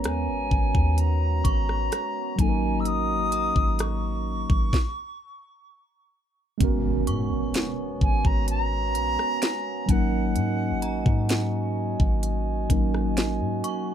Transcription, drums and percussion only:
0.04 cross-stick loud
0.04 closed hi-hat medium
0.51 kick medium
0.75 kick loud
0.98 closed hi-hat medium
1.45 kick loud
1.45 closed hi-hat medium
1.69 cross-stick medium
1.92 cross-stick loud
1.92 closed hi-hat medium
2.39 kick loud
2.39 closed hi-hat medium
2.85 closed hi-hat medium
3.32 closed hi-hat medium
3.56 kick medium
3.79 cross-stick loud
3.79 closed hi-hat medium
4.50 kick loud
4.73 kick loud
4.73 snare medium
6.60 kick loud
6.60 closed hi-hat medium
7.07 closed hi-hat medium
7.54 snare loud
7.54 closed hi-hat medium
8.01 kick loud
8.25 kick loud
8.48 closed hi-hat medium
8.95 closed hi-hat medium
9.19 cross-stick medium
9.42 snare loud
9.42 closed hi-hat medium
9.89 kick loud
9.89 closed hi-hat medium
10.36 closed hi-hat medium
10.82 closed hi-hat medium
11.06 kick medium
11.29 snare loud
11.29 closed hi-hat medium
12.00 kick loud
12.23 closed hi-hat medium
12.70 kick loud
12.70 closed hi-hat medium
12.94 cross-stick medium
13.17 snare loud
13.17 closed hi-hat medium
13.64 closed hi-hat medium

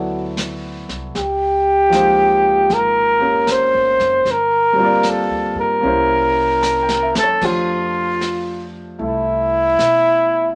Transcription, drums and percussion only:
0.37 snare soft
0.37 hi-hat pedal medium
0.89 snare soft
1.15 brush sweep soft
1.15 snare soft
1.92 snare soft
1.92 hi-hat pedal soft
2.70 brush sweep soft
2.70 snare soft
3.47 snare soft
3.47 hi-hat pedal medium
4.00 snare soft
4.26 brush sweep soft
4.26 snare soft
5.03 snare soft
5.03 hi-hat pedal medium
5.83 brush sweep soft
6.63 snare soft
6.63 hi-hat pedal medium
6.89 snare medium
7.15 snare medium
7.41 brush sweep soft
7.41 kick medium
7.41 snare soft
7.41 crash medium
8.21 snare soft
8.21 hi-hat pedal soft
9.00 brush sweep soft
9.79 snare soft
9.79 hi-hat pedal soft

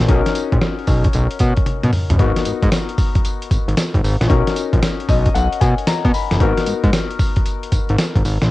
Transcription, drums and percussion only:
0.08 kick loud
0.08 closed hi-hat medium
0.26 snare medium
0.26 closed hi-hat medium
0.35 closed hi-hat medium
0.35 tambourine medium
0.52 kick loud
0.52 closed hi-hat soft
0.61 snare loud
0.61 closed hi-hat medium
0.61 tambourine medium
0.79 closed hi-hat soft
0.87 kick loud
0.87 open hi-hat medium
0.87 tambourine medium
1.04 kick loud
1.04 closed hi-hat medium
1.13 closed hi-hat medium
1.13 tambourine medium
1.31 closed hi-hat medium
1.39 kick medium
1.39 closed hi-hat medium
1.39 tambourine medium
1.57 kick medium
1.57 closed hi-hat soft
1.66 closed hi-hat medium
1.66 high tom medium
1.83 closed hi-hat soft
1.83 mid tom medium
1.93 mid tom medium
1.93 open hi-hat medium
2.10 closed hi-hat medium
2.10 floor tom loud
2.19 kick loud
2.19 closed hi-hat medium
2.36 snare medium
2.36 closed hi-hat medium
2.45 closed hi-hat medium
2.45 tambourine medium
2.63 kick loud
2.63 closed hi-hat soft
2.72 snare loud
2.72 closed hi-hat medium
2.72 tambourine loud
2.89 closed hi-hat soft
2.98 kick loud
2.98 open hi-hat medium
2.98 tambourine medium
3.15 kick loud
3.15 closed hi-hat medium
3.25 closed hi-hat medium
3.25 tambourine medium
3.42 closed hi-hat medium
3.51 kick medium
3.51 closed hi-hat medium
3.51 tambourine medium
3.69 closed hi-hat soft
3.77 snare loud
3.77 closed hi-hat medium
3.77 tambourine loud
3.94 kick medium
3.94 closed hi-hat soft
4.04 open hi-hat medium
4.04 tambourine medium
4.21 snare medium
4.21 closed hi-hat medium
4.30 kick loud
4.30 closed hi-hat medium
4.47 snare medium
4.47 closed hi-hat medium
4.56 closed hi-hat medium
4.56 tambourine medium
4.73 kick medium
4.73 closed hi-hat soft
4.83 snare loud
4.83 closed hi-hat medium
4.83 tambourine medium
5.00 closed hi-hat soft
5.09 kick loud
5.09 open hi-hat medium
5.09 tambourine medium
5.26 kick loud
5.26 closed hi-hat medium
5.35 closed hi-hat medium
5.35 tambourine medium
5.53 closed hi-hat medium
5.61 kick medium
5.61 closed hi-hat medium
5.61 tambourine medium
5.78 closed hi-hat soft
5.87 snare loud
5.87 closed hi-hat medium
5.87 tambourine loud
6.05 kick medium
6.05 closed hi-hat soft
6.14 open hi-hat medium
6.14 tambourine medium
6.31 snare medium
6.31 closed hi-hat medium
6.40 kick loud
6.40 closed hi-hat medium
6.58 snare medium
6.58 closed hi-hat medium
6.66 closed hi-hat medium
6.66 tambourine medium
6.84 kick loud
6.84 closed hi-hat soft
6.93 snare loud
6.93 closed hi-hat medium
6.93 tambourine medium
7.11 closed hi-hat soft
7.19 kick loud
7.19 open hi-hat medium
7.19 tambourine medium
7.36 kick loud
7.36 closed hi-hat medium
7.46 closed hi-hat medium
7.46 tambourine medium
7.63 closed hi-hat medium
7.72 kick medium
7.72 closed hi-hat medium
7.72 tambourine medium
7.89 closed hi-hat soft
7.98 snare loud
7.98 closed hi-hat medium
7.98 tambourine loud
8.16 kick medium
8.16 closed hi-hat soft
8.25 open hi-hat medium
8.25 tambourine medium
8.42 snare medium
8.42 closed hi-hat medium

